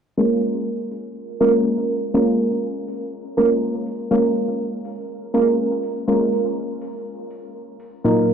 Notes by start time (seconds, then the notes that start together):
0.17 G#3 A#3 C#4 F4 A#4
0.42 open hi-hat
0.91 open hi-hat
1.40 G#3 A#3 C#4 F4 A#4, open hi-hat
1.90 open hi-hat
2.14 G#3 A#3 C#4 F4 A#4
2.39 open hi-hat
2.88 open hi-hat
3.37 G#3 A#3 C#4 F4 A#4, open hi-hat
3.86 open hi-hat
4.11 G#3 A#3 C#4 F4 A#4
4.35 open hi-hat
4.85 open hi-hat
5.34 G#3 A#3 C#4 F4 A#4, open hi-hat
5.83 open hi-hat
6.08 G#3 A#3 C#4 F4 A#4
6.32 open hi-hat
6.81 open hi-hat
7.31 open hi-hat
7.80 open hi-hat
8.04 A#2 F#3 A#3 D#4 F4 A#4
8.29 open hi-hat